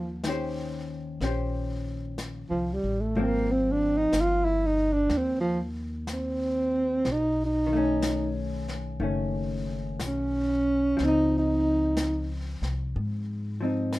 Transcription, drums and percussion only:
0.24 brush sweep, snare, hi-hat pedal
1.21 brush sweep, snare
2.18 brush sweep, snare, hi-hat pedal
3.15 brush sweep
4.13 brush sweep, snare, hi-hat pedal
5.09 brush sweep, snare
6.07 brush sweep, snare, hi-hat pedal
7.05 brush sweep, snare
8.02 brush sweep, snare, hi-hat pedal
8.68 snare
9.01 brush sweep
10.00 brush sweep, snare, hi-hat pedal
10.99 brush sweep, snare
11.97 brush sweep, snare, hi-hat pedal
12.63 snare
12.95 brush sweep
13.93 brush sweep, snare, hi-hat pedal

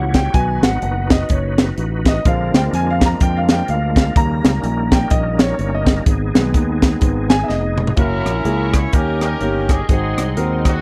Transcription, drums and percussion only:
0.14 kick, snare, closed hi-hat
0.34 kick, closed hi-hat
0.63 snare, closed hi-hat
0.82 closed hi-hat
1.10 kick, snare, closed hi-hat
1.29 kick, closed hi-hat
1.58 snare, closed hi-hat
1.78 closed hi-hat
2.05 kick, snare, closed hi-hat
2.25 kick, closed hi-hat
2.54 snare, closed hi-hat
2.74 closed hi-hat
3.01 kick, snare, closed hi-hat
3.20 kick, closed hi-hat
3.49 snare, closed hi-hat
3.68 closed hi-hat
3.96 kick, snare, closed hi-hat
4.16 kick, closed hi-hat
4.45 snare, closed hi-hat
4.64 closed hi-hat
4.92 kick, snare, closed hi-hat
5.10 kick, closed hi-hat
5.39 snare, closed hi-hat
5.59 closed hi-hat
5.86 kick, snare, closed hi-hat
6.06 kick, closed hi-hat
6.35 snare, closed hi-hat
6.54 kick, closed hi-hat
6.82 kick, snare, closed hi-hat
7.01 kick, closed hi-hat
7.30 snare, closed hi-hat
7.49 snare
7.78 mid tom
7.87 floor tom
7.97 kick, closed hi-hat
8.26 cross-stick, closed hi-hat
8.45 closed hi-hat
8.73 kick, cross-stick, closed hi-hat
8.93 kick, closed hi-hat
9.21 cross-stick, closed hi-hat
9.41 closed hi-hat
9.69 kick, cross-stick, closed hi-hat
9.89 kick, closed hi-hat
10.18 cross-stick, closed hi-hat
10.37 closed hi-hat
10.65 kick, cross-stick, closed hi-hat

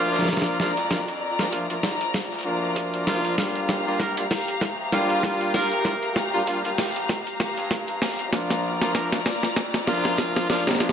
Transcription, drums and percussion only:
0.16 snare, closed hi-hat
0.22 snare
0.25 snare
0.29 kick, snare, closed hi-hat
0.33 snare
0.37 snare
0.42 snare
0.46 closed hi-hat
0.60 snare
0.77 closed hi-hat
0.91 kick, snare, closed hi-hat
1.08 closed hi-hat
1.39 snare
1.52 kick, closed hi-hat
1.70 closed hi-hat
1.83 snare
2.01 closed hi-hat
2.14 kick, snare, closed hi-hat
2.32 closed hi-hat
2.34 closed hi-hat
2.39 closed hi-hat
2.41 closed hi-hat
2.43 closed hi-hat
2.76 kick, closed hi-hat
2.94 closed hi-hat
3.07 snare
3.25 closed hi-hat
3.38 kick, snare, closed hi-hat
3.56 closed hi-hat
3.69 snare
4.00 kick, snare, closed hi-hat
4.17 closed hi-hat
4.31 snare, open hi-hat
4.48 closed hi-hat
4.61 kick, snare, closed hi-hat
4.92 snare, closed hi-hat
5.10 closed hi-hat
5.23 kick, snare, closed hi-hat
5.41 closed hi-hat
5.54 snare, open hi-hat
5.72 closed hi-hat
5.85 kick, snare, closed hi-hat
6.03 closed hi-hat
6.16 snare
6.47 kick, closed hi-hat
6.65 closed hi-hat
6.78 snare, open hi-hat
6.96 closed hi-hat
7.09 kick, snare, closed hi-hat
7.27 closed hi-hat
7.40 snare
7.58 closed hi-hat
7.71 kick, snare, closed hi-hat
7.88 closed hi-hat
8.02 snare, open hi-hat
8.19 closed hi-hat
8.33 kick, snare, closed hi-hat
8.50 snare, closed hi-hat
8.82 snare
8.95 kick, snare, closed hi-hat
9.12 snare, closed hi-hat
9.26 snare, open hi-hat
9.43 snare, closed hi-hat
9.56 kick, snare, closed hi-hat
9.74 snare, closed hi-hat
9.87 snare
10.05 snare, closed hi-hat
10.18 kick, snare, closed hi-hat
10.36 snare, closed hi-hat
10.50 snare, open hi-hat
10.67 snare, closed hi-hat
10.71 snare
10.73 snare
10.75 snare
10.77 snare
10.79 snare
10.80 kick, snare, closed hi-hat
10.89 snare

